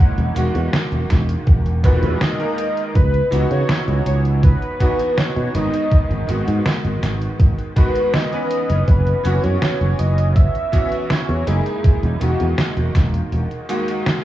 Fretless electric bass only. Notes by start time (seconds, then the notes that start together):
0.18 E1
0.36 E1
0.55 E2
0.92 E1
1.10 E1
1.47 E1
2.03 E2
2.95 C#2
3.32 C#2
3.51 C#3
3.88 C#2
4.06 C#2
5.36 B2
5.54 G#1
5.91 muted fretless electric bass stroke
6.10 G#1
6.29 G#1
6.47 G#2
6.84 G#1
7.03 G#1
7.40 G#1
8.70 F#1
8.88 F#1
9.25 F#1
9.44 F#2
9.81 F#1
9.99 F#1
11.29 E2
11.47 F#1
11.84 muted fretless electric bass stroke
12.03 E1
12.21 E1
12.40 E2
12.77 E1
12.95 E1
13.32 E1